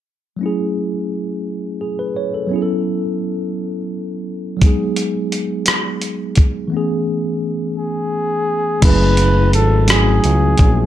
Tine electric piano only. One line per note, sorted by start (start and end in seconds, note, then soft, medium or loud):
0.37 2.45 F#3 soft
0.37 2.46 A3 soft
0.41 2.47 C#4 soft
0.41 2.48 E4 soft
0.46 1.80 G#4 medium
1.81 1.98 G#4 soft
1.99 2.16 B4 medium
2.16 2.33 C#5 medium
2.34 2.61 A4 soft
2.47 4.55 F#3 medium
2.47 4.57 B3 soft
2.51 4.58 C#4 soft
2.51 4.59 E4 medium
2.56 2.60 G#4 soft
2.62 4.63 A4 medium
4.57 6.66 F#3 medium
4.57 6.67 G#3 medium
4.62 6.68 B3 soft
4.62 6.69 D#4 soft
4.66 6.70 G#4 medium
6.68 8.76 E3 medium
6.68 8.78 A3 medium
6.72 8.79 B3 medium
6.72 8.80 C#4 soft
6.77 8.81 G#4 medium
8.81 9.73 F#3 medium
8.81 9.73 A3 medium
8.81 9.74 C#4 medium
8.81 9.74 E4 medium
8.85 9.75 G#4 medium
9.86 10.78 F#3 medium
9.86 10.78 A3 medium
9.86 10.79 C#4 medium
9.86 10.80 E4 medium
9.90 10.80 F#4 medium